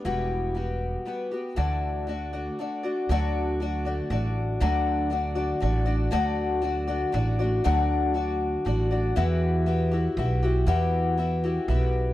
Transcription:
<<
  \new Staff \with { instrumentName = "Twelve-string acoustic guitar" } { \time 3/4 \key d \mixolydian \tempo 4 = 119 <e g b fis' g'>4 <g b fis' g'>4 <g b fis' g'>8 <b fis' g'>8 | <d e a d' fis' d''>4 <a d' fis' d''>8 <a d' fis' d''>8 <a d' fis' d''>8 <a d' fis' d''>8 | <d fis a d' fis' d''>4 <a d' fis' d''>8 <a d' fis' d''>8 <a d' fis' d''>4 | <d fis a d' fis' d''>4 <a d' fis' d''>8 <a d' fis' d''>8 <a d' fis' d''>8 <a d' fis' d''>8 |
<d fis a d' fis' d''>4 <a d' fis' d''>8 <a d' fis' d''>8 <a d' fis' d''>8 <a d' fis' d''>8 | <d fis a d' fis' d''>4 <a d' fis' d''>4 <a d' fis' d''>8 <a d' fis' d''>8 | <e b e' fis' g'>4 <b e' fis' g'>8 <e' fis' g'>8 <b e' fis' g'>8 <e' fis' g'>8 | <e b e' fis' g'>4 <b e' fis' g'>8 <e' fis' g'>8 <b e' fis' g'>4 | }
  \new Staff \with { instrumentName = "Upright bass" } { \clef bass \time 3/4 \key d \mixolydian e,,2 r4 | d,2 r4 | d,2 a,,4 | d,2 a,,4 |
d,2 a,,4 | d,2 a,,4 | e,2 b,,4 | e,2 b,,4 | }
>>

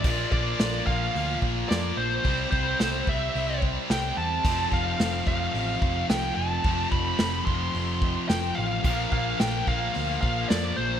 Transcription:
<<
  \new Staff \with { instrumentName = "Lead electric guitar" } { \time 4/4 \key f \lydian \tempo 4 = 109 d''8 d''4 f''4 r8 d''8 c''8~ | c''8 c''4 e''4 r8 g''8 a''8~ | a''8 f''4 f''4. g''8 a''8~ | a''8 b''4 c'''4. g''8 f''8~ |
f''8 f''8 g''8 f''4 f''8 d''8 c''8 | }
  \new Staff \with { instrumentName = "Distorted electric guitar" } { \clef bass \time 4/4 \key f \lydian <bes, f bes d' f'>1 | <c g c' e'>1 | <f, c f a c'>1 | <f, c f a c'>1 |
<bes, f bes d'>1 | }
  \new Staff \with { instrumentName = "Distorted electric guitar" } { \clef bass \time 4/4 \key f \lydian <bes, f bes>4. <bes, f bes>2~ <bes, f bes>8 | <c g c'>4. <c g c'>2~ <c g c'>8 | <f, c f>4. <f, c f>2~ <f, c f>8 | <f, c f>4. <f, c f>2~ <f, c f>8 |
<bes, f bes>4. <bes, f bes>2~ <bes, f bes>8 | }
  \new Staff \with { instrumentName = "Overdriven electric guitar" } { \clef bass \time 4/4 \key f \lydian <bes, f bes>2 <bes, f bes>2 | <c g c'>2 <c g c'>2 | <f, c f>2 <f, c f>2 | <f, c f>2 <f, c f>2 |
<bes, f bes>2 <bes, f bes>2 | }
  \new Staff \with { instrumentName = "Picked electric bass" } { \clef bass \time 4/4 \key f \lydian bes,,8 bes,,8 bes,,8 bes,,8 d,8 bes,,8 f,8 bes,,8 | c,8 c,8 c,8 c,8 c,4 c,8 e,8 | f,,8 f,,8 f,,8 f,,8 a,,8 f,,8 c,8 f,,8 | f,,8 f,,8 f,,8 f,,8 f,,4 f,,8 a,,8 |
bes,,8 bes,,8 bes,,8 bes,,8 d,8 bes,,8 f,8 bes,,8 | }
  \new DrumStaff \with { instrumentName = "Drums" } \drummode { \time 4/4 <cymc bd>8 bd8 <hho sn>8 bd8 hho8 bd8 <hho sn>4 | <hho bd>8 bd8 <hho sn>8 bd8 hho8 bd8 <hho sn>4 | <cymc bd>8 bd8 <hho sn>8 bd8 hho8 bd8 <hho sn>4 | <hho bd>8 bd8 <hho sn>8 bd8 hho8 bd8 <hho sn>4 |
<cymc bd>8 bd8 <hho sn>8 bd8 hho8 bd8 <hho sn>4 | }
>>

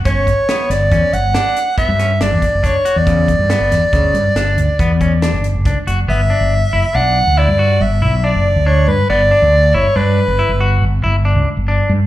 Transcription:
<<
  \new Staff \with { instrumentName = "Soprano saxophone" } { \time 7/4 \key g \lydian \tempo 4 = 139 cis''4. d''4 fis''4. e''4 d''4 cis''8. d''16~ | d''1. r4 | e''2 fis''4 d''4 e''4 d''4 cis''8 b'8 | d''4. cis''8 b'2 r2. | }
  \new Staff \with { instrumentName = "Clean electric guitar" } { \time 7/4 \key g \lydian cis'4 b4 cis'4 d'4 b8 cis'8 d'4 d'8 fis'8 | cis4 b4 cis4 d'4 b8 cis'8 d'4 d'8 fis'8 | b8 d'4 e'8 d'4 e'8 fis'4 e'8 d'4 d'4 | b8 d'4 e'8 d'4 e'8 fis'4 e'8 d'4 d'4 | }
  \new Staff \with { instrumentName = "Fretless electric bass" } { \clef bass \time 7/4 \key g \lydian g,,8 r4 g,,8 e,16 r16 g,,8 r4 r16 g,8. g,,16 e,16 r16 fis,,8 r8 e,16~ | e,8. g,16 r16 g,,16 e,16 r16 d,16 g,,16 g,16 r16 g,,8 d,16 r16 e,4~ e,16 g,,8 fis,,16 cis,16 r16 fis,,8 | g,,8 r16 g,,8 r16 fis,,16 r16 b,,8. d,8 g,8. g,,8 b,,8. fis,,8 d,8. g,16 r16 | g,,8 r16 d,8. g,,16 r16 g,8 r16 g,,16 r16 g,,8. g,,8 g,,8. cis,16 r16 g,,8 r16 g,16 r16 | }
  \new DrumStaff \with { instrumentName = "Drums" } \drummode { \time 7/4 <hh bd>8 <hh bd>8 <hh sn>8 <hh sn>8 <hh bd>8 hh8 <hh sn>8 hh8 <hh bd>8 <hh sn>8 <hh sn>8 <hh bd>8 <hh bd sn>8 hh8 | <hh bd>8 <hh bd>8 <hh sn>8 <hh sn>8 <hh bd>8 hh8 <hh sn>8 hh8 <hh bd>8 <hh bd>8 <hh sn>8 hh8 <hh bd>8 hh8 | r4 r4 r4 r4 r4 r4 r4 | r4 r4 r4 r4 r4 r4 r4 | }
>>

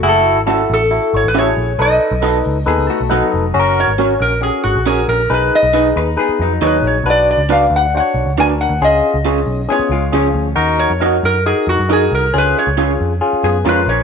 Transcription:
<<
  \new Staff \with { instrumentName = "Resonator guitar played with a steel bar" } { \time 4/4 \key b \mixolydian \tempo 4 = 136 r4. a'4 cis''16 b'16 cis''4 | dis''2. r4 | \key fis \major r8 cis''4 ais'8 gis'8 fis'8 gis'8 ais'8 | b'8 dis''4 r4. b'8 cis''8 |
d''8 d''8 eis''8 fis''8 fis''4 gis''8 fis''8 | dis''2 cis''4. r8 | r8 cis''4 ais'8 gis'8 fis'8 gis'8 ais'8 | b'8 cis''4 r4. b'8 cis''8 | }
  \new Staff \with { instrumentName = "Clean electric guitar" } { \time 4/4 \key b \mixolydian r4 <cis' fis' a' e''>8 r4. <cis' fis' a' e''>8 r8 | r4 <b fis' a' dis''>8 r4. <b fis' a' dis''>8 r8 | \key fis \major r4 <cis' fis' ais' cis''>8 r4. <cis' fis' ais' cis''>8 r8 | r4 <dis' gis' b' dis''>8 r4. <dis' gis' b' dis''>8 r8 |
r4 <d' fis' b' d''>8 r4. <d' fis' b' d''>8 r8 | r4 <cis' eis' gis' cis''>8 r4. <cis' eis' gis' cis''>8 r8 | r4 <dis' fis' ais' dis''>8 r4. <dis' fis' ais' dis''>8 r8 | r4 <cis' eis' gis' cis''>8 r4. <cis' eis' gis' cis''>8 r8 | }
  \new Staff \with { instrumentName = "Tine electric piano" } { \time 4/4 \key b \mixolydian << { r1 | r2 r8 a''8 fis''8 dis''8 | \key fis \major r1 | r1 |
r1 | r1 | r1 | r1 | } \\ { <e' fis' gis' a'>4 <e' fis' a'>4 <e' fis' a'>4 <e' fis' g' gis'>4 | <dis' a' b'>4 <dis' a' b'>4 <dis' a' b'>4 <dis' a' b'>4 | <cis' fis' gis' ais'>4 <cis' fis' ais'>4 <cis' fis' g' gis'>4 <cis' fis' ais'>4 | <dis' gis' b'>4 <dis' gis' b'>4 <dis' gis' b'>4 <dis' gis' cis''>4 |
<d' fis' b'>4 <d' fis' b'>4 <d' fis' bis' cis''>4 <d' fis' ais'>4 | <cis' eis' gis'>4 <cis' eis' gis'>4 <cis' e' eis' gis'>4 <cis' eis' gis'>4 | <dis' fis' ais'>4 <dis' eis' fis' ais'>4 <dis' fis' ais'>4 <dis' eis' fis' ais'>4 | <cis' eis' gis'>4 <cis' eis' gis'>4 <cis' eis' gis'>4 <cis' eis' ais'>4 | } >> }
  \new Staff \with { instrumentName = "Hollow-body jazz guitar" } { \time 4/4 \key b \mixolydian <a fis'>8 r2. r8 | r2 <b gis'>8 <a fis'>8 <fis dis'>4 | \key fis \major r1 | r4. <dis' b'>8 <b gis'>8 <fis dis'>4. |
r1 | r2 <b gis'>8 <gis eis'>8 <eis cis'>4 | r1 | r2 r8 <b gis'>8 <gis eis'>8 <eis cis'>8 | }
  \new Staff \with { instrumentName = "Picked electric bass" } { \clef bass \time 4/4 \key b \mixolydian fis,,8. gis,,8. a,,8. r16 gis,,16 a,,8. ais,,8 | b,,8 r16 b,,8. cis,8 dis,16 cis,16 r16 b,,16 b,,16 r16 f,,8 | \key fis \major fis,,8. gis,,8. ais,,8. r16 gis,,16 ais,,8. ais,,8 | b,,8 r16 b,,8. dis,8 r8 eis,8 dis,8 ais,,8 |
b,,8. cis,8. d,8. r16 b,,16 cis,16 d,8. d,16 | cis,8 r16 cis,8. b,,8 r8 cis,8 cis,8 d,8 | dis,8. eis,8. fis,8. r16 eis,16 fis,8. bis,,8 | cis,8 r16 cis,8. eis,8 r8 fis,8 eis,8 ais,,8 | }
>>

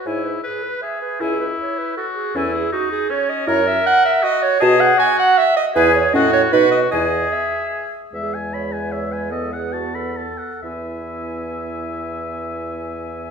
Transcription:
<<
  \new Staff \with { instrumentName = "Flute" } { \time 3/4 \key e \major \tempo 4 = 154 gis''8 r2 r8 | gis''8 r2 r8 | gis''8 r2 r8 | ais''8 r2 r8 |
a''8 r2 r8 | gis''8 r8 fis''8 r8 fis''8 r8 | gis''8 r2 r8 | e''2. |
fis''2~ fis''8 r8 | gis''2.~ | gis''2. | }
  \new Staff \with { instrumentName = "Clarinet" } { \time 3/4 \key e \major cis''8 b'8 gis'8 b'8 e''8 b'8 | gis'8 b'8 cis''8 b'8 a'8 gis'8 | a'8 gis'8 fis'8 gis'8 cis''8 dis''8 | cis''8 e''8 fis''8 e''8 dis''8 cis''8 |
dis''8 fis''8 gis''8 fis''8 e''8 dis''8 | b'8 cis''8 dis''8 cis''8 b'8 dis''8 | dis''4 e''4. r8 | r16 gis'8. cis''8 b'8 cis''8 b'8 |
a'8 gis'8 fis'8 a'8 a'4 | e'2.~ | e'2. | }
  \new Staff \with { instrumentName = "Oboe" } { \time 3/4 \key e \major e'4 b'4 gis'4 | e'2 fis'4 | e'4 dis'4 cis'4 | ais'2 fis'4 |
gis'4 fis'4. r8 | gis'4 fis'4 fis'4 | gis'2~ gis'8 r8 | e''8 gis''8 b''8 gis''8 e''8 gis''8 |
dis''8 fis''8 a''8 b''8 a''8 fis''8 | e''2.~ | e''2. | }
  \new Staff \with { instrumentName = "French horn" } { \time 3/4 \key e \major e'8 r2 r8 | e'8 r2 r8 | cis'8 r2 r8 | e'8 r2 r8 |
fis'8 r2 r8 | e'8 r8 cis'8 r8 dis'8 r8 | e'8 r2 r8 | gis2. |
b2~ b8 r8 | b2.~ | b2. | }
  \new Staff \with { instrumentName = "Bassoon" } { \clef bass \time 3/4 \key e \major gis,4 r2 | cis,4 r2 | e,4 r2 | fis,4 r2 |
b,4 r2 | e,4 a,4 b,4 | e,4 r2 | e,2.~ |
e,2~ e,8 r8 | e,2.~ | e,2. | }
>>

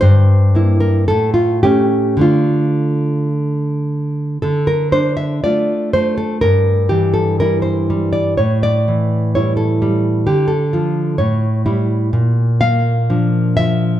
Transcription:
\new Staff \with { instrumentName = "Nylon-string guitar" } { \time 2/4 \key d \minor \tempo 4 = 61 << { c''8. bes'16 a'16 f'16 g'8 | f'4 r4 | a'16 bes'16 c''16 e''16 d''8 c''16 a'16 | bes'8 g'16 a'16 bes'16 c''8 d''16 |
cis''16 d''8. cis''16 a'8. | g'16 a'8. cis''8 r8 | r8 f''4 e''8 | } \\ { g,8 <bes e'>8 a,8 <a cis'>8 | <d a d'>2 | d8 d'8 <a f'>8 a8 | g,8 e8 <g e'>8 g8 |
a,8 e8 <g e'>8 g8 | d8 <f f'>8 a,8 <g e'>8 | bes,8 bes8 <f d'>8 f8 | } >> }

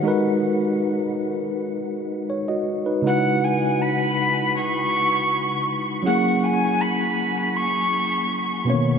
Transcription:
<<
  \new Staff \with { instrumentName = "Recorder" } { \time 4/4 \key fis \mixolydian \tempo 4 = 80 r1 | fis''8 gis''8 b''4 cis'''4. r8 | fis''8 gis''8 b''4 cis'''4. r8 | }
  \new Staff \with { instrumentName = "Tine electric piano" } { \time 4/4 \key fis \mixolydian << { r2. cis''16 <fis' dis''>8 <dis' b'>16~ | <dis' b'>16 r2. r8. | r1 | } \\ { <gis dis' fis' ais' b'>1 | <cis gis dis' e' fis' b'>1 | <fis ais cis' e' gis'>2.~ <fis ais cis' e' gis'>8 <b, dis ais b cis' cis''>8 | } >> }
>>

